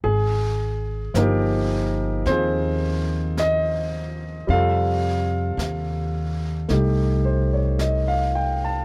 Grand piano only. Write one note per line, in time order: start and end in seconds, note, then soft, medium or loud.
0.04 1.19 G#4 medium
1.14 4.47 F3 medium
1.14 4.48 A#3 soft
1.14 4.49 D#4 soft
1.14 2.30 A#4 medium
1.19 4.50 G4 medium
2.27 4.48 C4 soft
2.27 4.49 F4 soft
2.27 4.50 G#4 soft
2.27 3.41 C5 medium
3.40 4.52 D#5 medium
4.47 8.85 C3 soft
4.47 8.85 G3 soft
4.47 8.85 F4 soft
4.47 6.65 F5 medium
4.52 8.85 A4 medium
6.68 8.85 A3 soft
6.68 8.85 D#4 soft
6.68 8.85 G4 soft
7.25 7.58 C5 soft
7.53 7.91 C#5 soft
7.81 8.32 D#5 medium
8.08 8.55 F5 medium
8.35 8.69 G5 medium
8.65 8.85 A5 soft